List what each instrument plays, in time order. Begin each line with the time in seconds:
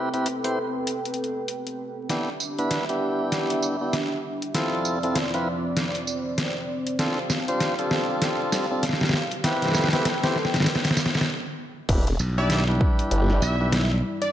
Already playing: analog synth pad C4 A4 B4 G5
0.14 tonewheel organ C4 E4 G4 B4, closed hi-hat
0.26 closed hi-hat
0.44 tonewheel organ C4 E4 G4 C5, closed hi-hat
0.87 closed hi-hat
1.05 closed hi-hat
1.14 closed hi-hat
1.24 closed hi-hat
1.48 closed hi-hat
1.67 closed hi-hat
2.09 tonewheel organ B3 D4 E4 G4, analog synth pad D4 G4 E5, snare, closed hi-hat
2.40 tambourine
2.58 tonewheel organ B3 D4 E4 B4, closed hi-hat
2.71 snare, closed hi-hat
2.89 tonewheel organ B3 D4 E4 G4, closed hi-hat
3.32 snare, closed hi-hat
3.50 closed hi-hat
3.63 tambourine
3.81 tonewheel organ B3 D4 E4 G4
3.93 snare, closed hi-hat
4.42 closed hi-hat
4.54 analog synth pad F3 C4 D5, tonewheel organ C4 E4 F4 A4, snare, closed hi-hat
4.85 tambourine
5.03 tonewheel organ C4 E4 F4 A4, closed hi-hat
5.16 snare, closed hi-hat
5.34 tonewheel organ C4 E4 F4 B4, closed hi-hat
5.77 snare, closed hi-hat
5.95 closed hi-hat
6.07 tambourine
6.38 snare, closed hi-hat
6.87 closed hi-hat
6.99 tonewheel organ C4 D4 F4 A4, analog synth pad G4 F5, snare, closed hi-hat
7.30 snare, tambourine
7.48 tonewheel organ C4 D4 F4 C5, closed hi-hat
7.60 snare, closed hi-hat
7.79 tonewheel organ C4 D4 F4 A4, closed hi-hat
7.91 snare
8.22 snare, closed hi-hat
8.52 snare, closed hi-hat, tambourine
8.71 tonewheel organ C4 D4 F4 A4
8.83 snare, closed hi-hat
8.89 snare
8.93 snare
9.01 snare
9.03 snare
9.09 snare
9.13 snare
9.31 closed hi-hat
9.44 tonewheel organ C4 E4 G4 B4, analog synth pad A4 B4 G5, snare, closed hi-hat
9.62 snare, closed hi-hat
9.65 snare
9.68 snare
9.71 snare
9.75 snare, tambourine
9.79 snare
9.84 snare
9.88 snare
9.93 tonewheel organ C4 E4 G4 B4, snare, closed hi-hat
10.05 snare, closed hi-hat
10.23 tonewheel organ C4 E4 G4 C5, snare, closed hi-hat
10.36 snare
10.45 snare
10.54 snare, closed hi-hat
10.56 snare
10.60 snare
10.62 snare
10.64 snare
10.66 snare, closed hi-hat
10.75 snare
10.85 snare, closed hi-hat
10.91 snare
10.97 snare, tambourine
11.06 snare
11.15 snare
11.21 snare
11.89 wobble bass E1, analog synth pad G3 E4 D5, tonewheel organ D4 E4 G4 B4, kick, closed hi-hat, crash
12.07 closed hi-hat
12.19 slap bass B1, tambourine
12.38 tonewheel organ D4 E4 G4 E5, digital synth lead D5
12.50 snare, closed hi-hat
12.68 tonewheel organ D4 E4 G4 B4
12.81 kick
12.99 closed hi-hat
13.11 wobble bass G1, closed hi-hat
13.30 snare
13.42 slap bass B1, digital synth lead E5, tambourine
13.60 tonewheel organ D4 E4 G4 B4
13.72 snare, closed hi-hat
14.22 digital synth lead D5, closed hi-hat